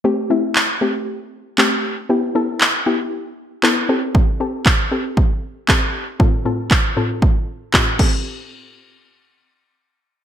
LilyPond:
<<
  \new Staff \with { instrumentName = "Synth pluck" } { \time 4/4 \key a \minor \tempo 4 = 117 <a c' g'>8 <a c' e'>4 <a c' g'>4 r8 <a c' g'>4 | <b e' g'>8 <b e' a'>4 <b e' g'>4 r8 <b e' a'>8 <c' g' a'>8~ | <c' g' a'>8 <c' g' a'>4 <c' g' a'>4 r8 <c' g' a'>4 | <a, c' f' a'>8 <a, c' f' a'>4 <a, c' f' a'>4 r8 <a, c' f' g'>8 <c' g' a'>8 |
r1 | }
  \new DrumStaff \with { instrumentName = "Drums" } \drummode { \time 4/4 r4 hc4 r4 hc4 | r4 hc4 r4 hc4 | bd4 <hc bd>4 bd4 <hc bd>4 | bd4 <hc bd>4 bd4 <hc bd>8 <cymc bd>8 |
r4 r4 r4 r4 | }
>>